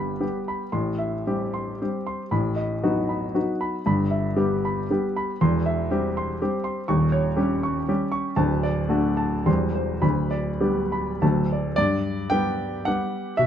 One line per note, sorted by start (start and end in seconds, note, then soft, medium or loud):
0.00 0.24 G1 soft
0.00 0.24 G2 soft
0.00 0.19 G3 soft
0.00 0.19 B3 soft
0.00 0.12 G4 soft
0.00 0.24 F5 soft
0.00 0.38 B5 soft
0.20 0.68 G3 soft
0.20 0.68 B3 soft
0.20 0.62 G4 soft
0.48 0.73 B5 soft
0.72 1.24 A1 soft
0.72 1.24 A2 medium
0.72 1.14 C6 soft
0.98 1.42 E5 soft
1.27 1.77 G3 soft
1.27 1.77 C4 soft
1.27 1.71 G4 soft
1.54 1.96 C6 soft
1.82 2.28 G3 soft
1.82 2.28 C4 soft
1.82 2.22 G4 soft
2.07 2.31 C6 soft
2.31 2.82 A1 soft
2.31 2.82 A2 medium
2.31 2.73 B5 soft
2.56 2.99 D#5 soft
2.83 3.32 F#3 soft
2.83 3.32 B3 soft
2.83 3.32 D#4 medium
2.83 3.26 F#4 soft
3.09 3.50 B5 soft
3.34 3.80 F#3 soft
3.34 3.81 B3 soft
3.34 3.81 D#4 soft
3.34 3.75 F#4 soft
3.61 3.85 B5 soft
3.86 4.36 G1 medium
3.86 4.36 G2 medium
3.86 4.27 B5 medium
4.11 4.54 E5 soft
4.36 4.85 G3 medium
4.36 4.86 B3 medium
4.36 4.79 G4 soft
4.65 5.05 B5 medium
4.90 5.35 G3 soft
4.90 5.36 B3 soft
4.90 5.30 G4 soft
5.16 5.40 B5 medium
5.41 5.89 E1 medium
5.41 5.89 E2 medium
5.41 5.80 C6 medium
5.66 6.06 E5 medium
5.91 6.37 G3 medium
5.91 6.37 C4 medium
5.91 6.31 G4 medium
6.17 6.56 C6 medium
6.42 6.85 G3 soft
6.42 6.85 C4 soft
6.42 6.80 G4 soft
6.64 6.88 C6 medium
6.88 7.37 D#1 medium
6.88 7.37 D#2 medium
6.88 7.28 C#6 medium
7.12 7.54 C#5 medium
7.37 7.85 G3 medium
7.37 7.86 C#4 medium
7.37 7.79 G4 medium
7.63 8.04 C#6 medium
7.89 8.35 G3 soft
7.89 8.35 C#4 soft
7.89 8.29 G4 medium
8.12 8.38 C#6 medium
8.36 8.89 D1 medium
8.36 8.89 D2 medium
8.36 8.79 A5 medium
8.63 9.08 D5 medium
8.89 9.42 A3 medium
8.89 9.43 D4 medium
8.89 9.36 F#4 medium
9.17 9.46 A5 soft
9.46 10.01 E1 medium
9.46 10.01 E2 medium
9.46 9.98 G3 soft
9.46 9.99 C4 soft
9.46 9.91 C6 medium
9.74 10.03 C5 soft
10.02 10.60 D1 medium
10.02 10.60 D2 medium
10.02 10.49 B5 medium
10.31 10.80 D5 medium
10.61 11.17 G3 soft
10.61 11.17 B3 soft
10.61 11.09 G4 soft
10.92 11.21 B5 soft
11.22 11.75 D1 medium
11.22 11.75 D2 medium
11.22 11.73 F#3 soft
11.22 11.73 A3 soft
11.22 11.67 A5 soft
11.53 11.75 D5 soft
11.76 12.30 G2 medium
11.76 12.31 D5 medium
12.30 12.82 G3 medium
12.30 12.82 B3 medium
12.30 12.83 G4 medium
12.30 12.85 G5 medium
12.85 13.35 G3 soft
12.85 13.35 B3 soft
12.85 13.35 G4 soft
12.85 13.38 F#5 medium
13.37 13.47 B2 medium
13.37 13.47 E5 medium